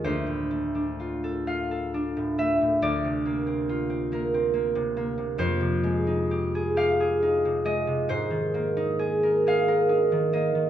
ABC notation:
X:1
M:6/8
L:1/16
Q:3/8=46
K:Fm
V:1 name="Harp"
c6 f4 =e2 | =d6 B6 | c6 f4 e2 | c6 f4 e2 |]
V:2 name="Harp"
=D,, =A,, =A, =D F =A F A D A,, A, A,, | =D,, C, B, C F C B, C B, C, B, C, | F,, C, A, E G A G A E C, A, C, | A,, E, B, E A B A B E E, B, E, |]